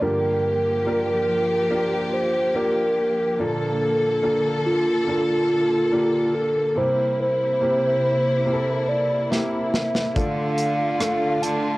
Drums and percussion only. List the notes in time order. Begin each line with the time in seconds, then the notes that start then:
9.32 snare
9.74 snare
9.95 snare
10.16 kick, closed hi-hat
10.58 closed hi-hat
11.00 cross-stick, closed hi-hat
11.43 closed hi-hat